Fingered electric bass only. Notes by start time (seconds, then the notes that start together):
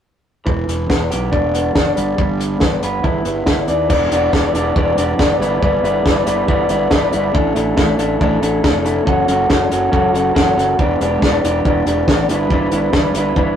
0.47 E1
0.68 E1
0.90 E1
1.12 B1
1.32 E1
1.75 F#1
1.98 G1
2.19 G1
2.61 G1
2.83 G1
3.04 G1
3.26 G1
3.47 G1
3.68 D#2
3.90 E1
4.11 E1
4.33 E1
4.53 E1
4.76 E1
4.97 E1
5.19 F#1
5.39 G1
5.62 G1
5.83 G1
6.06 G1
6.27 G1
6.49 G1
6.70 G1
6.91 G1
7.14 G1
7.35 A1
7.57 A1
7.78 A1
7.99 A1
8.21 A1
8.42 A1
8.64 F1
9.07 F#1
9.28 F#1
9.50 F#1
9.71 F#1
9.93 F#1
10.14 F#1
10.36 F#1
10.57 F#1
10.79 E1
11.00 E1
11.22 E1
11.44 E1
11.66 E1
11.86 E1
12.08 A1
12.29 G1
12.51 G1
12.71 G1
12.93 G1
13.14 G1
13.37 G1